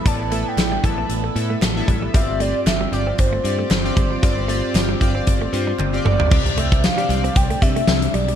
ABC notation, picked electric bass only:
X:1
M:4/4
L:1/16
Q:"Swing 16ths" 1/4=115
K:C
V:1 name="Picked electric bass" clef=bass
A,,,4 A,,,2 A,,,2 A,,,2 A,,2 A,,,2 A,,,2 | G,,,4 G,,,2 G,,,2 G,,,2 G,,2 G,,,2 G,,,2 | G,,,4 G,,,2 G,,,2 G,,,2 G,,2 G,,,2 G,,,2 | C,,2 C,,3 z C,,2 C,,2 C,2 C,,2 B,,,2 |]